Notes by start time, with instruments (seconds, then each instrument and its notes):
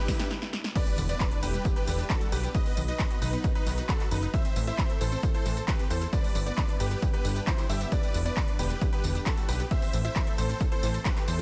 Already playing: supersaw synth G3 D4 E4 G4 B4 E5, grand piano B4, riser
0.08 synth arpeggio sound D3, kick, snare, open hi-hat, tambourine
0.19 synth arpeggio sound D4, snare, closed hi-hat, tambourine
0.31 snare
0.42 snare
0.53 snare
0.64 snare
0.75 synth arpeggio sound D3, supersaw synth G3 D4 E4 B4 D5, grand piano D5, kick, closed hi-hat, crash, tambourine, impact
0.87 synth arpeggio sound G3, closed hi-hat, tambourine
0.98 analog synth bass E1, synth arpeggio sound D3, open hi-hat, tambourine
1.09 synth arpeggio sound B3, supersaw synth B4 D5, grand piano D5, closed hi-hat, tambourine
1.20 synth arpeggio sound D3, kick, clap, closed hi-hat, tambourine
1.31 synth arpeggio sound D4, closed hi-hat
1.43 analog synth bass E1, synth arpeggio sound D3, supersaw synth G4 B4, grand piano B4, open hi-hat, tambourine
1.54 synth arpeggio sound G3, closed hi-hat, tambourine
1.65 synth arpeggio sound D3, kick, closed hi-hat, tambourine
1.76 synth arpeggio sound B3, supersaw synth G4 B4, grand piano B4, closed hi-hat
1.87 analog synth bass E1, synth arpeggio sound D3, open hi-hat, tambourine
1.99 synth arpeggio sound D4, closed hi-hat, tambourine
2.10 synth arpeggio sound D3, supersaw synth F#4 A4, grand piano A4, kick, clap, closed hi-hat, tambourine
2.21 synth arpeggio sound G3, closed hi-hat, tambourine
2.32 analog synth bass B1, synth arpeggio sound D3, supersaw synth G4 B4, grand piano B4, open hi-hat, tambourine
2.43 synth arpeggio sound B3, closed hi-hat, tambourine
2.55 synth arpeggio sound D#3, supersaw synth F#3 B3 D#4 B4 D#5, grand piano D#5, kick, closed hi-hat, tambourine
2.66 synth arpeggio sound B3, open hi-hat, tambourine
2.77 analog synth bass B1, synth arpeggio sound D#3, open hi-hat, tambourine
2.88 synth arpeggio sound D#4, supersaw synth B4 D#5, grand piano D#5, closed hi-hat, tambourine
2.99 synth arpeggio sound D#3, kick, clap, closed hi-hat, tambourine
3.11 synth arpeggio sound F#4, closed hi-hat
3.22 analog synth bass B1, synth arpeggio sound D#3, supersaw synth D#4 B4, grand piano B4, open hi-hat, tambourine
3.33 synth arpeggio sound B3, closed hi-hat, tambourine
3.44 synth arpeggio sound D#3, kick, closed hi-hat, tambourine
3.55 supersaw synth D#4 B4, synth arpeggio sound D#4, grand piano B4, closed hi-hat
3.67 analog synth bass B1, synth arpeggio sound D#3, open hi-hat, tambourine
3.78 synth arpeggio sound F#4, closed hi-hat, tambourine
3.89 synth arpeggio sound D#3, supersaw synth F#4 A4, grand piano A4, kick, clap, closed hi-hat, tambourine
4.00 synth arpeggio sound B3, clap, closed hi-hat, tambourine
4.11 analog synth bass F#1, synth arpeggio sound D#3, supersaw synth D#4 B4, grand piano B4, open hi-hat, tambourine
4.23 synth arpeggio sound D#4, closed hi-hat, tambourine
4.34 supersaw synth E3 A3 C4 A4 C5 E5, synth arpeggio sound E3, grand piano E5, kick, closed hi-hat, tambourine
4.45 synth arpeggio sound C4, closed hi-hat, tambourine
4.56 analog synth bass A1, synth arpeggio sound E3, open hi-hat, tambourine
4.67 synth arpeggio sound E4, supersaw synth C5 E5, grand piano E5, closed hi-hat, tambourine
4.78 kick, clap, closed hi-hat, tambourine
4.90 synth arpeggio sound A4, closed hi-hat
5.01 analog synth bass A1, synth arpeggio sound E3, supersaw synth A4 C5, grand piano C5, open hi-hat, tambourine
5.12 synth arpeggio sound C4, closed hi-hat, tambourine
5.23 synth arpeggio sound E3, kick, closed hi-hat, tambourine
5.34 synth arpeggio sound E4, supersaw synth A4 C5, grand piano C5, closed hi-hat
5.46 analog synth bass A1, synth arpeggio sound E3, open hi-hat, tambourine
5.57 synth arpeggio sound A4, closed hi-hat, tambourine
5.68 synth arpeggio sound E3, supersaw synth G4 B4, grand piano B4, kick, clap, closed hi-hat, tambourine
5.79 synth arpeggio sound C4, closed hi-hat, tambourine
5.90 analog synth bass E2, synth arpeggio sound E3, supersaw synth A4 C5, grand piano C5, open hi-hat, tambourine
6.02 synth arpeggio sound E4, closed hi-hat, tambourine
6.13 synth arpeggio sound D3, supersaw synth G3 B3 D4 E4 B4 D5, grand piano D5, kick, closed hi-hat, tambourine
6.24 synth arpeggio sound G3, open hi-hat, tambourine
6.35 analog synth bass G1, synth arpeggio sound D3, open hi-hat, tambourine
6.46 synth arpeggio sound B3, supersaw synth B4 D5, grand piano D5, closed hi-hat, tambourine
6.58 synth arpeggio sound D3, kick, clap, closed hi-hat, tambourine
6.69 synth arpeggio sound D4, closed hi-hat
6.80 analog synth bass G1, synth arpeggio sound D3, supersaw synth G4 B4, grand piano B4, open hi-hat, tambourine
6.91 synth arpeggio sound G3, closed hi-hat, tambourine
7.02 synth arpeggio sound D3, kick, closed hi-hat, tambourine
7.14 synth arpeggio sound B3, supersaw synth G4 B4, grand piano B4, closed hi-hat
7.25 analog synth bass G1, synth arpeggio sound D3, open hi-hat, tambourine
7.36 synth arpeggio sound D4, closed hi-hat, tambourine
7.47 synth arpeggio sound D3, supersaw synth E4 C5, grand piano C5, kick, clap, closed hi-hat, tambourine
7.58 synth arpeggio sound G3, clap, closed hi-hat, tambourine
7.69 analog synth bass G1, synth arpeggio sound D3, supersaw synth G4 E5, grand piano E5, open hi-hat, tambourine
7.81 synth arpeggio sound B3, closed hi-hat, tambourine
7.92 synth arpeggio sound D3, supersaw synth B3 B4 D5, grand piano D5, kick, closed hi-hat, tambourine
8.03 synth arpeggio sound G3, closed hi-hat, tambourine
8.14 analog synth bass E1, synth arpeggio sound D3, open hi-hat, tambourine
8.25 synth arpeggio sound B3, supersaw synth B4 D5, grand piano D5, closed hi-hat, tambourine
8.37 synth arpeggio sound D3, kick, clap, closed hi-hat, tambourine
8.48 synth arpeggio sound D4, closed hi-hat
8.59 analog synth bass E1, synth arpeggio sound D3, supersaw synth G4 B4, grand piano B4, open hi-hat, tambourine
8.70 synth arpeggio sound G3, closed hi-hat, tambourine
8.81 synth arpeggio sound D3, kick, closed hi-hat, tambourine
8.93 synth arpeggio sound B3, supersaw synth G4 B4, grand piano B4, closed hi-hat
9.04 analog synth bass E1, synth arpeggio sound D3, open hi-hat, tambourine
9.15 synth arpeggio sound D4, closed hi-hat, tambourine
9.26 synth arpeggio sound D3, supersaw synth F#4 A4, grand piano A4, kick, clap, closed hi-hat, tambourine
9.37 synth arpeggio sound G3, closed hi-hat, tambourine
9.49 analog synth bass B1, synth arpeggio sound D3, supersaw synth G4 B4, grand piano B4, open hi-hat, tambourine
9.60 synth arpeggio sound B3, closed hi-hat, tambourine
9.71 synth arpeggio sound E3, supersaw synth E3 A3 C4 A4 C5 E5, grand piano E5, kick, closed hi-hat, tambourine
9.82 synth arpeggio sound C4, open hi-hat, tambourine
9.93 analog synth bass A1, synth arpeggio sound E3, open hi-hat, tambourine
10.05 synth arpeggio sound E4, supersaw synth C5 E5, grand piano E5, closed hi-hat, tambourine
10.16 synth arpeggio sound E3, kick, clap, closed hi-hat, tambourine
10.27 synth arpeggio sound A4, closed hi-hat
10.38 analog synth bass A1, synth arpeggio sound E3, supersaw synth A4 C5, grand piano C5, open hi-hat, tambourine
10.49 synth arpeggio sound C4, closed hi-hat, tambourine
10.61 synth arpeggio sound E3, kick, closed hi-hat, tambourine
10.72 synth arpeggio sound E4, supersaw synth A4 C5, grand piano C5, closed hi-hat
10.83 analog synth bass A1, synth arpeggio sound E3, open hi-hat, tambourine
10.94 synth arpeggio sound A4, closed hi-hat, tambourine
11.05 synth arpeggio sound E3, supersaw synth G4 B4, grand piano B4, kick, clap, closed hi-hat, tambourine
11.17 synth arpeggio sound C4, clap, closed hi-hat, tambourine
11.28 analog synth bass E2, synth arpeggio sound E3, supersaw synth A4 C5, grand piano C5, open hi-hat, tambourine